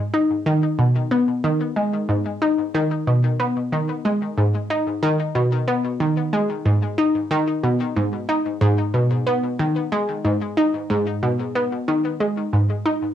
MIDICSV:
0, 0, Header, 1, 2, 480
1, 0, Start_track
1, 0, Key_signature, 5, "minor"
1, 0, Tempo, 652174
1, 101, Time_signature, 4, 2, 24, 8
1, 9672, End_track
2, 0, Start_track
2, 0, Title_t, "Synth arpeggio sound"
2, 0, Program_c, 0, 84
2, 100, Note_on_c, 0, 63, 79
2, 260, Note_off_c, 0, 63, 0
2, 340, Note_on_c, 0, 51, 97
2, 436, Note_off_c, 0, 51, 0
2, 579, Note_on_c, 0, 47, 75
2, 739, Note_off_c, 0, 47, 0
2, 819, Note_on_c, 0, 59, 75
2, 915, Note_off_c, 0, 59, 0
2, 1060, Note_on_c, 0, 51, 84
2, 1220, Note_off_c, 0, 51, 0
2, 1297, Note_on_c, 0, 56, 75
2, 1458, Note_off_c, 0, 56, 0
2, 1538, Note_on_c, 0, 44, 74
2, 1635, Note_off_c, 0, 44, 0
2, 1779, Note_on_c, 0, 63, 74
2, 1939, Note_off_c, 0, 63, 0
2, 2020, Note_on_c, 0, 51, 100
2, 2116, Note_off_c, 0, 51, 0
2, 2261, Note_on_c, 0, 47, 77
2, 2420, Note_off_c, 0, 47, 0
2, 2500, Note_on_c, 0, 59, 77
2, 2596, Note_off_c, 0, 59, 0
2, 2741, Note_on_c, 0, 51, 75
2, 2900, Note_off_c, 0, 51, 0
2, 2981, Note_on_c, 0, 56, 82
2, 3140, Note_off_c, 0, 56, 0
2, 3221, Note_on_c, 0, 44, 76
2, 3316, Note_off_c, 0, 44, 0
2, 3461, Note_on_c, 0, 63, 72
2, 3620, Note_off_c, 0, 63, 0
2, 3700, Note_on_c, 0, 51, 99
2, 3796, Note_off_c, 0, 51, 0
2, 3938, Note_on_c, 0, 47, 81
2, 4099, Note_off_c, 0, 47, 0
2, 4178, Note_on_c, 0, 59, 75
2, 4275, Note_off_c, 0, 59, 0
2, 4419, Note_on_c, 0, 51, 74
2, 4579, Note_off_c, 0, 51, 0
2, 4659, Note_on_c, 0, 56, 73
2, 4819, Note_off_c, 0, 56, 0
2, 4898, Note_on_c, 0, 44, 82
2, 4995, Note_off_c, 0, 44, 0
2, 5138, Note_on_c, 0, 63, 77
2, 5299, Note_off_c, 0, 63, 0
2, 5379, Note_on_c, 0, 51, 96
2, 5475, Note_off_c, 0, 51, 0
2, 5619, Note_on_c, 0, 47, 75
2, 5779, Note_off_c, 0, 47, 0
2, 5861, Note_on_c, 0, 44, 82
2, 5957, Note_off_c, 0, 44, 0
2, 6100, Note_on_c, 0, 63, 76
2, 6259, Note_off_c, 0, 63, 0
2, 6339, Note_on_c, 0, 44, 101
2, 6568, Note_off_c, 0, 44, 0
2, 6579, Note_on_c, 0, 47, 73
2, 6739, Note_off_c, 0, 47, 0
2, 6819, Note_on_c, 0, 59, 82
2, 6916, Note_off_c, 0, 59, 0
2, 7061, Note_on_c, 0, 51, 78
2, 7220, Note_off_c, 0, 51, 0
2, 7301, Note_on_c, 0, 56, 75
2, 7460, Note_off_c, 0, 56, 0
2, 7541, Note_on_c, 0, 44, 76
2, 7636, Note_off_c, 0, 44, 0
2, 7781, Note_on_c, 0, 63, 84
2, 7940, Note_off_c, 0, 63, 0
2, 8022, Note_on_c, 0, 44, 99
2, 8250, Note_off_c, 0, 44, 0
2, 8262, Note_on_c, 0, 47, 77
2, 8421, Note_off_c, 0, 47, 0
2, 8502, Note_on_c, 0, 59, 73
2, 8597, Note_off_c, 0, 59, 0
2, 8742, Note_on_c, 0, 51, 84
2, 8900, Note_off_c, 0, 51, 0
2, 8980, Note_on_c, 0, 56, 76
2, 9140, Note_off_c, 0, 56, 0
2, 9221, Note_on_c, 0, 44, 75
2, 9316, Note_off_c, 0, 44, 0
2, 9460, Note_on_c, 0, 63, 77
2, 9620, Note_off_c, 0, 63, 0
2, 9672, End_track
0, 0, End_of_file